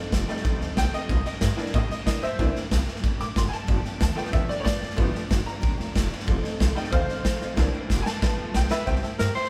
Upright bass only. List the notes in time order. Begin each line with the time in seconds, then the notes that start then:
0.13 F1
0.28 muted upright bass stroke
0.45 C2
0.61 D2
0.77 B1
0.93 muted upright bass stroke
1.09 C2
1.26 muted upright bass stroke
1.42 G2
1.58 muted upright bass stroke
1.74 A2
1.90 muted upright bass stroke
2.06 C3
2.22 A#2
2.39 C2
2.55 muted upright bass stroke
2.71 C2
2.87 muted upright bass stroke
3.04 G2
3.19 A2
3.36 F#1
3.53 muted upright bass stroke
3.68 G1
3.85 muted upright bass stroke
4.01 D2
4.16 muted upright bass stroke
4.33 E2
4.49 muted upright bass stroke
4.66 G2
4.82 F2
4.98 G1
5.15 muted upright bass stroke
5.31 G1
5.48 muted upright bass stroke
5.63 D2
5.79 E2
5.96 E1
6.12 muted upright bass stroke
6.28 F1
6.44 muted upright bass stroke
6.60 C2
6.76 muted upright bass stroke
6.92 D2
7.09 muted upright bass stroke
7.25 F2
7.41 A#1
7.57 C2
7.75 muted upright bass stroke
7.90 F1
8.07 muted upright bass stroke
8.22 G1
8.39 E2
8.55 B1
8.71 muted upright bass stroke
8.87 C2
9.04 muted upright bass stroke
9.20 G2
9.36 muted upright bass stroke